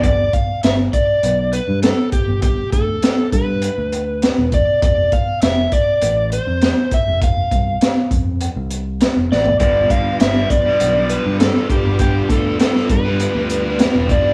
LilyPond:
<<
  \new Staff \with { instrumentName = "Electric slide guitar" } { \time 4/4 \key g \mixolydian \tempo 4 = 100 d''8 f''8 e''8 d''4 b'8 a'8 g'8 | g'8 a'4 b'2 d''8 | d''8 f''8 e''8 d''4 c''4 e''8 | f''4. r2 d''8 |
d''8 f''8 e''8 d''4 b'8 a'8 g'8 | g'8 a'8 a'8 b'2 d''8 | }
  \new Staff \with { instrumentName = "Transistor combo organ" } { \time 4/4 \key g \mixolydian r1 | r1 | r1 | r1 |
<g b d' f'>1~ | <g b d' f'>1 | }
  \new Staff \with { instrumentName = "Distorted electric guitar" } { \clef bass \time 4/4 \key g \mixolydian r1 | r1 | r1 | r1 |
<g, d g>8 <g, d g>8 <g, d g>16 <d g>8 <d g>8 <d g>8 <d g>16 <g, d g>16 <d g>16 <g, d g>16 <d g>16 | <g, d g>8 <g, d g>8 <g, d g>16 <d g>8 <d g>8 <d g>8 <d g>16 <g, d g>16 <d g>16 <g, d g>16 <d g>16 | }
  \new Staff \with { instrumentName = "Fingered electric bass" } { \clef bass \time 4/4 \key g \mixolydian g,,8 r8 g,,8 r8 b,,8. g,8 r8 g,,16~ | g,,8 d,8 r8 g,8. d,4 e,,8 r16 | f,,8 r8 f,,8 r8 a,,8. f,8 r8 f,,16~ | f,,8 c,8 r8 f,8. c,4 f,,16 a,,16 g,,16 |
g,,8 r8 g,,8 r8 b,,8. g,8 r8 g,,16~ | g,,8 d,8 r8 g,8. d,4 e,,8 r16 | }
  \new DrumStaff \with { instrumentName = "Drums" } \drummode { \time 4/4 <hh bd>8 <hh bd>8 <hh sn>8 <hh bd>8 hh8 hh8 <hh sn>8 <hh bd>8 | <hh bd>8 <hh bd>8 <hh sn>8 <hh bd>8 hh8 hh8 <hh sn>8 <hh bd>8 | <hh bd>8 <hh bd>8 <hh sn>8 <hh bd>8 hh8 hh8 <hh sn>8 <hh bd>8 | <hh bd>8 <hh bd>8 <hh sn>8 <hh bd>8 hh8 hh8 <hh sn>8 sn16 tomfh16 |
<hh bd>8 <hh bd>8 <hh sn>8 <hh bd>8 hh8 hh8 <hh sn>8 <hh bd>8 | <hh bd>8 <hh bd>8 <hh sn>16 sn16 <hh bd>8 hh8 hh8 <hh sn>8 <hh bd>8 | }
>>